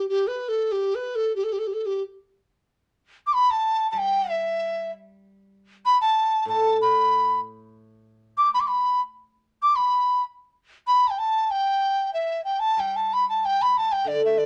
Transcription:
0.09 dizi G4
0.27 dizi B4
0.49 dizi A4
0.72 dizi G4
0.95 dizi B4
1.15 dizi A4
1.36 dizi G4
1.44 dizi A4
1.52 dizi G4
1.59 dizi A4
1.67 dizi G4
1.73 dizi A4
1.86 dizi G4
3.27 dizi D6
3.33 dizi B5
3.51 dizi A5
3.91 guzheng G3, dizi A5
3.98 dizi G5
4.30 dizi E5
5.86 dizi B5
6.01 dizi A5
6.45 guzheng A2, dizi A5
6.82 dizi B5
8.38 dizi D6
8.54 dizi B5
8.60 dizi D6
8.68 dizi B5
9.63 dizi D6
9.76 dizi B5
10.87 dizi B5
11.08 dizi G5 A5
11.19 dizi A5
11.51 dizi G5
12.14 dizi E5
12.44 dizi G5
12.60 dizi A5
12.77 guzheng G3, dizi G5
12.96 dizi A5
13.13 dizi B5
13.29 dizi A5
13.45 dizi G5
13.62 dizi B5
13.78 dizi A5
13.92 dizi G5
14.04 guzheng D3, dizi D5
14.25 dizi E5
14.38 dizi D5

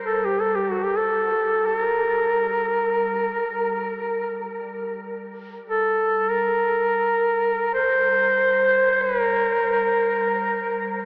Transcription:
Already playing: ambient pad G3
0.05 duduk A4
0.25 duduk G4
0.40 duduk A4
0.55 duduk G4
0.71 duduk F#4
0.84 duduk G4
0.97 duduk A4
1.66 duduk A4
1.79 duduk A#4
5.70 duduk A4
6.31 duduk A#4
7.31 ambient pad G3
7.74 duduk C5
9.02 duduk B4
9.21 duduk A#4

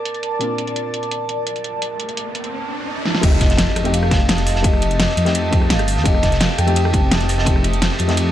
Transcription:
Already playing: felt piano A#2 A#3 C4 D4 F4, vibraphone A#4, analog synth pad D5 A5
0.05 closed hi-hat
0.14 closed hi-hat
0.23 closed hi-hat
0.39 felt piano A#2 A#3 C4 D4 F4, closed hi-hat, riser
0.58 closed hi-hat
0.67 closed hi-hat
0.76 closed hi-hat
0.94 closed hi-hat
1.03 closed hi-hat
1.11 closed hi-hat
1.29 closed hi-hat
1.47 closed hi-hat
1.56 closed hi-hat
1.64 closed hi-hat
1.82 closed hi-hat
2.00 closed hi-hat
2.09 closed hi-hat
2.17 closed hi-hat
2.35 closed hi-hat
2.44 closed hi-hat
3.06 analog synth pad G3 F4 A4 D#5, snare
3.15 snare
3.21 detuned saw bass F1, felt piano A3 C4 D#4 G4, analog synth pad G4 D#5 A5, vibraphone D#5, kick, closed hi-hat, crash, ride, sub drop
3.32 cross-stick
3.41 kick, snare, closed hi-hat, ride
3.50 snare, closed hi-hat
3.58 snare, closed hi-hat, ride
3.68 snare
3.76 detuned saw bass F2, cross-stick, closed hi-hat, ride
3.84 felt piano A3 C4 D#4 G4, closed hi-hat, ride
3.94 vibraphone F5, closed hi-hat, ride
4.03 cross-stick
4.10 detuned saw bass F1, felt piano A3 C4 D#4 G4, kick, snare, closed hi-hat, ride
4.29 snare, closed hi-hat, ride
4.38 snare, closed hi-hat
4.46 snare, open hi-hat, ride
4.56 snare
4.63 detuned saw bass F1, felt piano A3 C4 D#4 G4, vibraphone D#5, kick, closed hi-hat, ride
4.73 cross-stick
4.82 closed hi-hat, ride
4.91 closed hi-hat
5.00 snare, closed hi-hat, ride
5.09 snare
5.17 detuned saw bass F2, vibraphone D#5, closed hi-hat, ride
5.25 felt piano A3 C4 D#4 G4, snare, closed hi-hat
5.35 closed hi-hat, ride
5.51 felt piano A3 C4 D#4 G4, kick, closed hi-hat, ride
5.62 cross-stick
5.70 detuned saw bass G1, vibraphone F5, snare, closed hi-hat, ride
5.79 cross-stick, closed hi-hat, ride
5.88 open hi-hat, ride
5.97 detuned saw bass F2, snare
6.04 detuned saw bass F1, felt piano A3 C4 D#4 G4, vibraphone D#5, kick, closed hi-hat, ride
6.15 cross-stick
6.23 kick, snare, closed hi-hat, ride
6.32 snare, closed hi-hat
6.40 snare, closed hi-hat, ride
6.49 snare
6.58 detuned saw bass F2, vibraphone G5, cross-stick, closed hi-hat, ride
6.67 felt piano A3 C4 D#4 G4, closed hi-hat, ride
6.76 closed hi-hat, ride
6.85 cross-stick
6.92 detuned saw bass F1, felt piano A3 C4 D#4 G4, kick, closed hi-hat, ride
7.11 snare, closed hi-hat, ride
7.20 snare, closed hi-hat
7.29 snare, open hi-hat, ride
7.38 snare
7.45 detuned saw bass F1, felt piano A3 C4 D#4 G4, kick, closed hi-hat, ride
7.56 cross-stick
7.64 closed hi-hat, ride
7.73 closed hi-hat
7.82 snare, closed hi-hat, ride
7.92 snare
7.99 detuned saw bass F2, closed hi-hat, ride
8.08 felt piano A3 C4 D#4 G4, snare, closed hi-hat
8.17 closed hi-hat, ride

